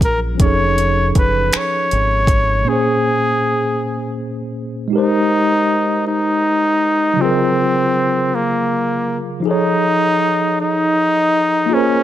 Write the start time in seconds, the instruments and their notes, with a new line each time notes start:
Already playing: fingered electric bass A#1, tine electric piano F#3 C#4 F4 G#4 A#4
0.01 flugelhorn A#4, kick, closed hi-hat
0.35 tine electric piano F3 C#4
0.40 fingered electric bass F1, tine electric piano D#4 G#4, flugelhorn C#5, kick, closed hi-hat
0.46 tine electric piano A4
0.78 closed hi-hat
1.15 fingered electric bass F#1, flugelhorn B4, kick, closed hi-hat
1.53 finger snap, closed hi-hat
1.57 flugelhorn C#5
1.91 fingered electric bass G#1, closed hi-hat
2.27 kick, closed hi-hat
2.62 tine electric piano A#2 A#3
2.67 tine electric piano C#4 G#4, flugelhorn G#4
2.73 tine electric piano C5
4.88 tine electric piano G#3 D#4
4.93 flugelhorn D#4, tine electric piano G4 A#4
4.98 tine electric piano C5
6.07 flugelhorn D#4
7.14 tine electric piano C#3 F#3
7.19 flugelhorn C4, tine electric piano F4 G#4
7.25 tine electric piano A#4
8.35 flugelhorn A#3
9.40 tine electric piano F3 D#4
9.45 flugelhorn D#4, tine electric piano G#4 A4
9.51 tine electric piano C#5
10.61 flugelhorn D#4
11.66 tine electric piano A#3 F4
11.71 flugelhorn C#4, tine electric piano G#4 C5
11.77 tine electric piano A#4